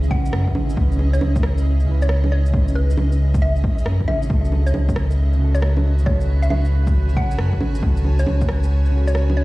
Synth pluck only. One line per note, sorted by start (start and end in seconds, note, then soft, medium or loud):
0.11 0.74 F#5 medium
1.13 1.36 C#5 medium
2.02 2.25 C#5 medium
2.32 2.55 C#5 medium
2.75 3.12 B4 medium
3.42 3.65 E5 medium
4.08 4.36 E5 medium
4.67 4.89 C#5 medium
5.55 5.78 C#5 medium
6.06 6.30 C#5 medium
6.42 6.48 E5 medium
6.50 6.60 E5 medium
7.17 7.80 F#5 medium
8.19 8.42 C#5 medium
9.07 9.30 C#5 medium
9.37 9.44 C#5 loud